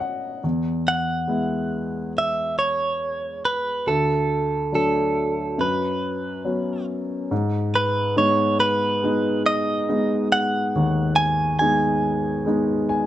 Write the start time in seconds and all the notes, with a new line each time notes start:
Already playing: F#2 B3 C#4 D#4 C#5 D#5
0.00 F#5
0.44 E2
0.88 F#5
1.28 G#3 B3 E4
2.18 E5
2.59 C#5
3.45 B4
3.87 D2 A4
4.72 F#3 A3 D4 A4
5.58 F#2 B4
6.45 F#3 B3 C#4
7.31 G#2
7.75 B4
8.16 G#3 B3 D#4 C#5
8.60 B4
9.03 G#3 B3 D#4
9.46 D#5
9.89 G#3 B3 D#4
10.32 F#5
10.75 D#2
11.16 G#5
11.59 G#3 B3 D#4 G#5
12.46 G#3 B3 D#4
12.89 G#5